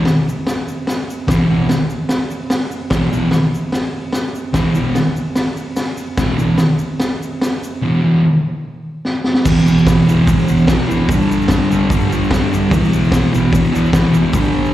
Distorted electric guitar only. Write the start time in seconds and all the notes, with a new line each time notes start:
1.28 E2 B2 E3
1.49 E2 B2 E3
2.91 E2 B2 E3
3.11 E2 B2 E3
4.53 E2 B2 E3
4.75 E2 B2 E3
6.18 E2 B2 E3
6.38 E2 B2 E3
7.82 E2 B2 E3
8.03 E2 B2 E3
9.45 E2 B2 E3
10.08 B2 E3
10.28 E2 B2 E3
10.49 B2 E3
10.69 E2 B2 E3
10.88 B2 E3
11.09 G2 D3 G3
11.70 D3 G3
11.90 G2 D3 G3
12.10 D3 G3
12.30 G2 D3 G3
12.52 D3 G3
12.71 E2 B2 E3
13.32 B2 E3
13.52 E2 B2 E3
13.73 B2 E3
13.92 E2 B2
13.96 E3
14.14 B2 E3
14.34 G2 D3 G3